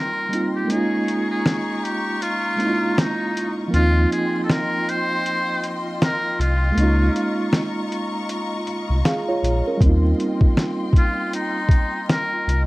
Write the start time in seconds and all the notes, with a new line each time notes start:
Already playing: G3 A#3 C4 D#4 F4 A#4 D#5 G5 C6
0.29 G3 A#3 C4
0.33 D#4 F4, closed hi-hat
0.56 G4
0.65 G#3 A#3
0.69 C#4 D#4 G#4 A#5 C#6, closed hi-hat
0.76 F4
1.08 closed hi-hat
1.31 G#4
1.46 snare, closed hi-hat
1.84 G4, closed hi-hat
2.22 F4, closed hi-hat
2.56 G#3 A#3 C#4, closed hi-hat
2.61 D#4 E4
2.69 F4
2.98 D#4, snare, closed hi-hat
3.37 closed hi-hat
3.68 F3 A#3
3.73 D#2 C4 D#4 F4 G5 C6, closed hi-hat
3.79 F4
4.12 G#4, closed hi-hat
4.44 A4
4.49 A#4, snare, closed hi-hat
4.89 C5, closed hi-hat
5.26 closed hi-hat
5.64 closed hi-hat
6.02 A#4, snare, closed hi-hat
6.39 C2 F4, closed hi-hat
6.72 G#3 A#3
6.77 C#2 C#4 D#4 A#5 C#6, closed hi-hat
6.83 F4
7.16 closed hi-hat
7.53 snare, closed hi-hat
7.92 closed hi-hat
8.29 closed hi-hat
8.67 closed hi-hat
8.89 C2
9.05 G#4 F5, snare, closed hi-hat
9.29 F4 C#5
9.43 A#1, closed hi-hat
9.67 C#4 A#4
9.77 D#2 G3 A#3 G5, kick
9.81 C4 C6, closed hi-hat
9.86 D#4 F4
10.20 closed hi-hat
10.41 kick
10.57 snare, closed hi-hat
10.93 kick, closed hi-hat
10.98 F4
11.33 D#4, closed hi-hat
11.69 kick, closed hi-hat
12.09 A#4, snare, closed hi-hat
12.47 C2, closed hi-hat